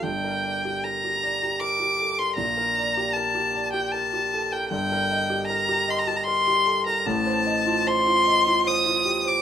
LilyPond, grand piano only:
\new Staff \with { instrumentName = "Grand piano" } { \time 3/4 \key g \dorian \tempo 4 = 76 <g,, g,>16 bes'16 d''16 g'16 bes'16 g'16 d''16 g'16 bes'16 g'16 a'16 bes'16 | <bes,, bes,>16 bes'16 d''16 g'16 bes'16 g'16 d''16 g'16 bes'16 g'16 a'16 bes'16 | \key f \mixolydian <g,, g,>16 bes'16 ees''16 g'16 bes'16 g'16 ees''16 g'16 bes'16 g'16 a'16 bes'16 | <a,, a,>16 c''16 ees''16 f'16 c''16 f'16 ees''16 f'16 c''16 f'16 g'16 c''16 | }